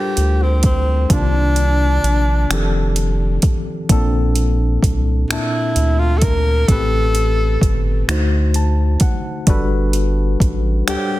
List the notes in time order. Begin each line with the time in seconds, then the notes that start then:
Already playing: G3 D4 F4 G4 A4 A#4 C5
0.17 D2, closed hi-hat
0.42 C4
0.63 C4, kick, closed hi-hat
1.10 C2 C3 D#3 A#3 D4 F4, kick, closed hi-hat
1.56 closed hi-hat
2.04 A#1, closed hi-hat
2.50 F1 D#3 F3 C4 G4 A4, finger snap, closed hi-hat
2.96 closed hi-hat
3.42 kick, closed hi-hat
3.89 A#1 A#2 A#3 C4 D4 A4, kick, closed hi-hat
4.36 closed hi-hat
4.83 C2, kick, closed hi-hat
5.29 D2 A#2 A#3 C4 D4 E4 A5, finger snap, closed hi-hat
5.76 D2, closed hi-hat
5.99 F4
6.18 A4, closed hi-hat
6.22 A#4, kick
6.68 A1 A2 A3 C4 G4 A4 B4, kick, closed hi-hat
7.15 closed hi-hat
7.61 G1, kick, closed hi-hat
8.08 D2 D3 A3 D#4 F#4 C5, finger snap, closed hi-hat
8.54 A5, closed hi-hat
9.00 F#5, kick, closed hi-hat
9.47 G1 G3 D4 F#4 A4 B4, kick, closed hi-hat
9.93 closed hi-hat
10.40 A1, kick, closed hi-hat
10.87 D2 G3 D4 G4 A4 C5 F#5, finger snap, closed hi-hat
10.96 C#5